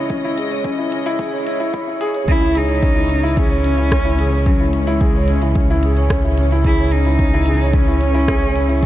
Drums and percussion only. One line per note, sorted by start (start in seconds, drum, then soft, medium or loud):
0.10 kick loud
0.10 closed hi-hat soft
0.38 closed hi-hat medium
0.52 closed hi-hat soft
0.64 kick loud
0.64 closed hi-hat soft
0.92 closed hi-hat medium
1.06 closed hi-hat soft
1.19 kick loud
1.19 closed hi-hat soft
1.47 closed hi-hat medium
1.60 closed hi-hat soft
1.74 kick loud
1.74 closed hi-hat soft
2.01 closed hi-hat medium
2.15 closed hi-hat soft
2.28 kick loud
2.28 closed hi-hat soft
2.55 closed hi-hat medium
2.69 closed hi-hat soft
2.83 kick loud
2.83 closed hi-hat soft
3.09 closed hi-hat medium
3.23 closed hi-hat soft
3.37 kick loud
3.37 closed hi-hat soft
3.64 closed hi-hat medium
3.78 closed hi-hat soft
3.92 kick loud
3.92 cross-stick medium
3.92 closed hi-hat soft
4.19 closed hi-hat medium
4.33 closed hi-hat soft
4.46 kick loud
4.46 closed hi-hat soft
4.73 closed hi-hat medium
4.87 closed hi-hat soft
5.00 kick loud
5.00 closed hi-hat soft
5.28 closed hi-hat medium
5.42 closed hi-hat soft
5.55 kick loud
5.55 closed hi-hat soft
5.83 closed hi-hat medium
5.97 closed hi-hat soft
6.10 kick loud
6.10 cross-stick medium
6.10 closed hi-hat soft
6.38 closed hi-hat medium
6.51 closed hi-hat soft
6.64 kick loud
6.64 closed hi-hat soft
6.91 closed hi-hat medium
7.05 closed hi-hat soft
7.19 kick loud
7.19 closed hi-hat soft
7.46 closed hi-hat medium
7.60 closed hi-hat soft
7.73 kick loud
7.73 closed hi-hat soft
8.01 closed hi-hat medium
8.15 closed hi-hat soft
8.28 kick loud
8.28 cross-stick medium
8.28 closed hi-hat soft
8.56 closed hi-hat medium
8.69 closed hi-hat soft
8.83 kick loud